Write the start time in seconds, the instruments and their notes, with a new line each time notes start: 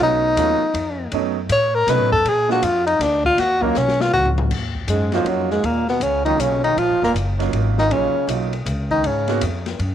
0.00 upright bass B1, grand piano F#3 A3 B3 C#4 D#4, tenor saxophone D#4
0.37 upright bass D#2, grand piano F#3 A3 B3 C#4 F4, hi-hat pedal, ride
0.74 upright bass F2, ride
1.12 upright bass F#2, grand piano F#3 A3 B3 C#4 D#4, ride
1.49 upright bass A2, tenor saxophone C#5, hi-hat pedal, ride
1.75 tenor saxophone A#4
1.87 upright bass B2, grand piano F#3 A3 B3 C#4 D#4, tenor saxophone B4, snare, hi-hat pedal, ride
1.99 upright bass A2
2.12 upright bass F#2, tenor saxophone A4, kick
2.25 upright bass A#2, tenor saxophone G#4, ride
2.48 grand piano F3 G#3 A#3 D4 F4, tenor saxophone F#4, snare
2.62 upright bass F2, tenor saxophone F4, hi-hat pedal, ride
2.87 tenor saxophone D#4, ride
2.99 upright bass D2, tenor saxophone D4, snare, ride
3.25 tenor saxophone F4, kick
3.38 upright bass D#2, tenor saxophone F#4, snare, ride
3.62 grand piano F#3 A#3 C#4 D#4 F4, tenor saxophone A#3, kick
3.75 upright bass B1, tenor saxophone C#4, snare, hi-hat pedal
3.88 snare
4.01 tenor saxophone F4, snare
4.13 upright bass C#2, tenor saxophone F#4, floor tom
4.26 floor tom
4.38 floor tom
4.51 upright bass D#2, kick, crash
4.75 kick
4.88 upright bass F#2, trombone G#2, tenor saxophone G#3, hi-hat pedal, ride
5.12 trombone F2, tenor saxophone F3, grand piano A#3 C#4 D#4 F4 F#4, snare, ride
5.25 upright bass F2, trombone F#2, tenor saxophone F#3, ride
5.51 trombone G#2, tenor saxophone G#3, snare
5.63 upright bass D#2, trombone A#2, tenor saxophone A#3, ride
5.88 trombone B2, tenor saxophone B3, snare
6.00 upright bass C#2, trombone C#3, tenor saxophone C#4, hi-hat pedal, ride
6.25 trombone D#3, grand piano F#3 A#3 C#4 D#4 F4, tenor saxophone D#4, ride
6.38 upright bass B1, trombone C#3, tenor saxophone C#4, hi-hat pedal, ride
6.64 trombone D#3, tenor saxophone D#4, ride
6.76 upright bass A#1, trombone F3, tenor saxophone F4, ride
6.90 upright bass F#1
7.02 upright bass D#1, trombone A#2, tenor saxophone A#3, snare
7.14 upright bass F#1, hi-hat pedal, ride
7.39 grand piano F#3 A#3 C#4 D#4 F4, snare, ride
7.53 upright bass G#1, ride
7.78 trombone D#3, tenor saxophone D#4, snare
7.90 upright bass A#1, trombone C#3, grand piano F#3 A#3 C#4 D#4 F4, tenor saxophone C#4, ride
8.14 muted upright bass stroke
8.27 upright bass B1, grand piano F#3 A#3 C#4 D#4 F4, hi-hat pedal, ride
8.53 ride
8.66 upright bass C#2, hi-hat pedal, ride
8.91 trombone D#3, tenor saxophone D#4, kick
9.03 upright bass G#2, trombone C#3, tenor saxophone C#4, ride
9.28 grand piano G#3 A#3 B3 D#4 F#4, snare, ride
9.41 upright bass F2, hi-hat pedal, ride
9.66 snare, ride
9.79 upright bass F#2, ride